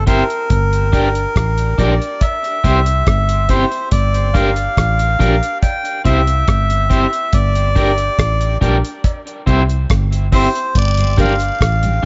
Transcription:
Already playing: G1
0.07 C4 E4 G4 A#4 C5, kick, closed hi-hat
0.30 closed hi-hat
0.50 G1, kick, closed hi-hat
0.73 closed hi-hat
0.93 D4 G4 A#4 D5, kick, closed hi-hat
1.15 closed hi-hat
1.36 A1, kick, cross-stick, closed hi-hat
1.58 closed hi-hat
1.78 A#1 D4 G4 A#4 D5, kick, closed hi-hat
2.02 closed hi-hat
2.21 E5, kick, closed hi-hat, cowbell
2.44 closed hi-hat
2.64 C2 C4 E4 G4 C5, kick, closed hi-hat
2.86 closed hi-hat
3.07 G1, kick, cross-stick, closed hi-hat
3.29 closed hi-hat
3.49 C4 E4 G4 C5, kick, closed hi-hat
3.72 closed hi-hat
3.91 G1 D5, kick, closed hi-hat
4.14 closed hi-hat
4.33 D4 G4 A#4 D5 F5, kick, closed hi-hat
4.56 closed hi-hat
4.77 A1, kick, cross-stick, closed hi-hat
4.99 closed hi-hat
5.19 A#1 D4 G4 A#4 D5, kick, closed hi-hat
5.43 closed hi-hat
5.62 G5, kick, closed hi-hat, cowbell
5.85 closed hi-hat
6.05 C2 C4 E4 G4 C5 E5, kick, closed hi-hat
6.27 closed hi-hat
6.48 G1, kick, cross-stick, closed hi-hat
6.70 closed hi-hat
6.90 C4 E4 G4 C5, kick, closed hi-hat
7.13 closed hi-hat
7.33 G1 D5, kick, closed hi-hat
7.55 closed hi-hat
7.75 D4 G4 A#4 D5, kick, closed hi-hat
7.98 closed hi-hat
8.19 A1, kick, cross-stick, closed hi-hat
8.41 closed hi-hat
8.61 A#1 D4 G4 A#4 D5, kick, closed hi-hat
8.85 closed hi-hat
9.04 kick, closed hi-hat, cowbell
9.27 closed hi-hat
9.46 C2 C4 E4 G4 C5, kick, closed hi-hat
9.69 closed hi-hat
9.90 G1, kick, cross-stick, closed hi-hat
10.12 closed hi-hat
10.32 C4 E4 G4 C5, kick, open hi-hat
10.55 closed hi-hat
10.75 G1 D5, kick, closed hi-hat, vibraslap
10.98 G2, closed hi-hat
11.17 D3 G3 A#3 D4 G4 A#4 D5 F5, kick, closed hi-hat
11.40 closed hi-hat
11.61 A1, kick, cross-stick, closed hi-hat
11.83 G2, closed hi-hat

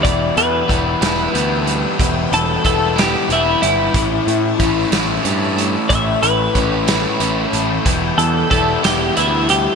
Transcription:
0.03 E1 E2 B2 E3 G3 B3 E4 B4 D5 G5 E6, kick, closed hi-hat
0.36 E2 E3 G3 B3 E4 B4, closed hi-hat
0.69 E1 E3 G3 B3 E4, kick, closed hi-hat
1.01 E1 E2 B2 E3 G3 B3 E4, snare, closed hi-hat
1.32 D2 E3 G3 B3 E4, closed hi-hat
1.63 G3 A4
1.67 closed hi-hat
1.98 E1 E2 B2 E3 G3 B3 E4, kick, closed hi-hat
2.30 E1 E3 G3 B3 E4 A4, closed hi-hat
2.62 E1 E3 G3 B3 E4 A4, kick, closed hi-hat
2.96 E2 B2 E3 G3 B3 E4 G4, snare, closed hi-hat
3.29 E1 E3 G3 B3 E4, closed hi-hat
3.61 G1 G3 E4, closed hi-hat
3.93 A1 A2 E3 A3 C#4 E4 C#5 A5 E6, kick, closed hi-hat
4.27 A2 A3 C#4 E4, closed hi-hat
4.58 A1 E3 A3 C#4 E4, kick, closed hi-hat
4.91 A1 A2 E3 A3 C#4 E4, snare, closed hi-hat
5.23 G2 E3 A3 C#4 E4, closed hi-hat
5.57 A3, closed hi-hat
5.88 A1 A2 E3 A3 C#4 E4 E5 G5, kick, closed hi-hat
6.22 A1 A3 C#4 E4 B4, closed hi-hat
6.55 A1 E3 A3 C#4 E4, kick, closed hi-hat
6.88 A2 E3 A3 C#4 E4, snare, closed hi-hat
7.20 A1 E3 A3 C#4 E4, closed hi-hat
7.49 A4
7.53 A1 A3, closed hi-hat
7.85 E1 E2 B2 E3 G3 B3 E4 B4 E6, kick, closed hi-hat
8.17 E2 E3 G3 B3 E4 A4, closed hi-hat
8.49 E1 E3 G3 B3 E4 A4, kick, closed hi-hat
8.82 E1 E2 B2 E3 G3 B3 E4 G4, snare, closed hi-hat
9.15 D2 E3 G3 B3 E4, closed hi-hat
9.49 G3 G4, closed hi-hat

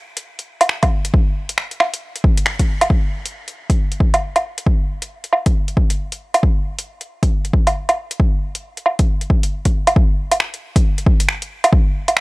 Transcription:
0.17 closed hi-hat
0.39 closed hi-hat
0.61 closed hi-hat, low woodblock
0.69 finger snap
0.83 kick, closed hi-hat, low woodblock
1.05 closed hi-hat
1.14 kick
1.49 closed hi-hat
1.58 finger snap
1.71 closed hi-hat
1.80 finger snap, low woodblock
1.94 closed hi-hat
2.16 closed hi-hat
2.24 kick
2.37 closed hi-hat
2.46 finger snap
2.59 kick, closed hi-hat
2.81 closed hi-hat, low woodblock
2.90 kick
3.26 closed hi-hat
3.48 closed hi-hat
3.70 kick, closed hi-hat
3.92 closed hi-hat
4.00 kick
4.14 closed hi-hat, low woodblock
4.36 closed hi-hat, low woodblock
4.58 closed hi-hat
4.66 kick
5.02 closed hi-hat
5.24 closed hi-hat
5.33 low woodblock
5.46 kick, closed hi-hat
5.68 closed hi-hat
5.77 kick
5.90 closed hi-hat
6.12 closed hi-hat
6.34 closed hi-hat, low woodblock
6.43 kick
6.79 closed hi-hat
7.01 closed hi-hat
7.23 kick, closed hi-hat
7.45 closed hi-hat
7.53 kick
7.67 closed hi-hat, low woodblock
7.89 closed hi-hat, low woodblock
8.11 closed hi-hat
8.20 kick
8.55 closed hi-hat
8.77 closed hi-hat
8.86 low woodblock
8.99 kick, closed hi-hat
9.21 closed hi-hat
9.30 kick
9.43 closed hi-hat
9.65 kick, closed hi-hat
9.87 closed hi-hat, low woodblock
9.96 kick
10.32 closed hi-hat, low woodblock
10.40 finger snap
10.54 closed hi-hat
10.76 kick, closed hi-hat
10.98 closed hi-hat
11.06 kick
11.20 closed hi-hat
11.29 finger snap
11.42 closed hi-hat
11.64 closed hi-hat, low woodblock
11.73 kick
12.08 closed hi-hat, low woodblock
12.17 finger snap

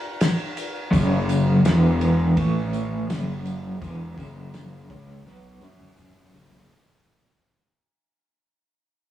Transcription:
0.21 snare, ride, tambourine
0.57 ride, tambourine
0.91 F#1 F#2 C#3 F#3, kick, ride, tambourine
1.29 ride, tambourine
1.65 E1 E2 B2 E3, snare, ride, tambourine
2.01 ride, tambourine
2.37 A1 A2 E3 A3, kick, ride, tambourine
2.73 ride, tambourine
3.08 F#1 F#2 C#3 F#3, snare, ride, tambourine
3.46 ride, tambourine
3.81 E1 E2 B2 E3, kick, ride, tambourine
4.17 F#1 F#2 C#3 F#3, kick, ride, tambourine
4.54 snare, ride, tambourine
4.90 C#2 C#3 G#3 C#4, kick, ride, tambourine
5.09 snare
5.25 B1 B2 F#3 B3, snare, tambourine
5.61 F#2 F#3 C#4 F#4, snare, tambourine
5.80 mid tom
5.98 mid tom, tambourine
6.33 F#1 F#2 C#3 F#3, floor tom, tambourine
6.53 floor tom

